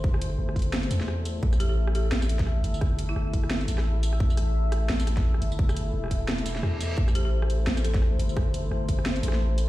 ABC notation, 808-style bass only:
X:1
M:4/4
L:1/8
Q:"Swing 16ths" 1/4=173
K:Am
V:1 name="808-style bass" clef=bass
G,,,2 G,,,3 E,,3 | A,,,4 A,,,3 G,,,- | G,,,2 G,,,3 A,,,3 | A,,,4 A,,,3 G,,,- |
G,,,2 E,,,4 E,,2 | A,,,4 A,,,3 G,,,- | G,,,2 G,,,3 A,,,3 |]